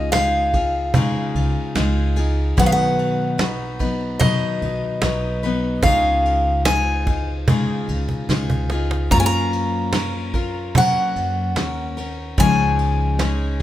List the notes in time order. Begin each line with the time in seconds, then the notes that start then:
Already playing: C#2 C#3 G#3 D#4 F4 G#4 D#5
0.12 G#3 D#4 F4 G#4 F5, snare, cajon slap, ride
0.53 D#4 F4 G#4, kick, cajon slap, ride
0.74 cajon slap
0.94 C#3 G#3 D#4 F4 G#4, cajon bass, ride
1.15 cajon slap
1.34 C#2, ride
1.75 C#2 G#3 D#4 F4 G#4, cajon slap, snare, ride
2.16 D#4 F4 G#4, cajon slap, ride
2.57 B1 B2 D#3 F#3 B3 D#4 B4 F#5, cajon bass, kick, cajon slap, ride
2.66 F5
2.72 F#5
2.98 cajon slap, ride
3.38 F#3 B3 D#4 B4, snare, cajon slap, ride
3.79 F#3 B3 D#4 B4, kick, cajon slap, ride
4.01 cajon slap
4.20 B2 D#3 F#3 B3 D#4 B4 D#5, cajon bass, ride
4.41 cajon slap
4.62 B1, ride
5.02 B1 F#3 B3 D#4 B4, cajon slap, snare, ride
5.42 F#3 B3 D#4 B4, cajon slap, ride
5.83 C#2 C#3 G#3 D#4 F4 G#4 F5, cajon bass, kick, cajon slap, ride
6.24 cajon slap, ride
6.65 G#3 D#4 F4 G#4 G#5, cajon slap, snare, ride
7.07 D#4 F4 G#4, kick, cajon bass, cajon slap, ride
7.28 cajon slap
7.47 C#3 G#3 D#4 F4 G#4, cajon bass, ride
7.68 cajon slap
7.88 C#2, cajon slap, ride
8.09 cajon bass
8.29 C#2 G#3 D#4 F4 G#4, cajon bass, snare, ride
8.50 cajon bass
8.70 F4 G#4, cajon slap, ride
8.74 D#4
8.91 cajon slap
9.11 F#2 F#3 A#3 C#4 F4 A#4 A#5, cajon bass, kick, cajon slap, ride
9.20 G#5
9.26 A#5
9.52 cajon slap, ride
9.93 A#3 C#4 F4 A#4, cajon slap, snare, ride
10.34 C#4 F4 A#4, kick, ride
10.55 cajon slap
10.75 F#3 A#3 C#4 A#4 F#5, cajon bass, ride
11.16 F#2, ride
11.56 D#2 A#3 C#4 A#4, cajon slap, snare, ride
11.97 C#4 A#4, cajon slap, ride
12.38 C#2 C#3 F3 G#3 C#4 D#4 G#4 G#5, cajon bass, kick, cajon slap, ride
12.79 ride
13.19 G#3 C#4 D#4 G#4, snare, cajon slap, ride